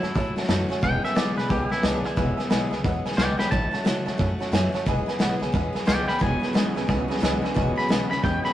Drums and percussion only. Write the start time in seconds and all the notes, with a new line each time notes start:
0.03 snare
0.16 kick, snare
0.37 snare
0.43 snare
0.49 snare, hi-hat pedal
0.71 snare
0.83 kick, snare
1.04 snare
1.17 snare, hi-hat pedal
1.38 snare
1.50 kick, snare
1.71 snare
1.83 snare, hi-hat pedal
2.05 snare
2.17 kick, snare
2.39 snare
2.51 snare, hi-hat pedal
2.72 snare
2.84 kick, snare
3.05 snare
3.12 snare
3.18 snare, hi-hat pedal
3.39 snare
3.52 kick, snare
3.73 snare
3.86 snare, hi-hat pedal
4.07 snare
4.19 kick, snare
4.41 snare
4.53 snare, hi-hat pedal
4.74 snare
4.87 kick, snare
5.08 snare
5.20 snare, hi-hat pedal
5.41 snare
5.54 kick, snare
5.75 snare
5.88 snare, hi-hat pedal
6.08 snare
6.21 kick, snare
6.42 snare
6.55 snare, hi-hat pedal
6.76 snare
6.89 kick, snare
7.10 snare
7.17 snare
7.23 snare, hi-hat pedal
7.45 snare
7.57 kick, snare
7.78 snare
7.90 snare, hi-hat pedal
8.11 snare
8.24 kick, snare
8.44 snare